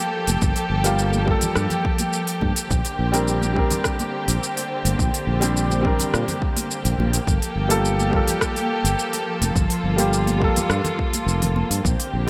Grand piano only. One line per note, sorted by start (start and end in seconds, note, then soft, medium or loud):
0.00 0.80 G3 medium
0.00 0.81 A#3 medium
0.00 0.82 F4 medium
0.00 0.83 A4 loud
0.84 1.24 G3 medium
0.84 1.24 A#3 medium
0.84 1.24 F4 medium
0.84 1.25 G4 medium
1.25 2.67 G3 medium
1.25 2.68 A#3 medium
1.29 2.69 F4 medium
1.29 2.70 A4 medium
3.12 3.51 G3 medium
3.12 3.52 C4 medium
3.12 3.53 D4 medium
3.12 3.53 A#4 loud
3.53 5.37 G3 medium
3.53 5.38 C4 medium
3.57 5.39 D4 medium
3.57 5.40 A#4 medium
5.40 5.79 G3 medium
5.40 5.81 C4 medium
5.40 5.81 D4 medium
5.40 5.82 G4 loud
5.81 7.24 G3 medium
5.81 7.25 C4 medium
5.81 7.26 D4 medium
5.87 7.27 A#4 medium
7.68 8.08 G3 medium
7.68 8.09 A#3 medium
7.68 8.10 F4 medium
7.68 8.10 A4 loud
8.10 9.94 G3 medium
8.10 9.95 A#3 medium
8.14 9.96 F4 medium
8.14 9.97 A4 medium
9.96 10.36 G3 medium
9.96 10.38 A#3 medium
9.96 10.38 F4 medium
9.96 10.39 G4 loud
10.38 11.81 G3 medium
10.38 11.82 A#3 medium
10.42 11.83 F4 medium
10.42 11.84 A4 loud
12.27 12.30 G3 medium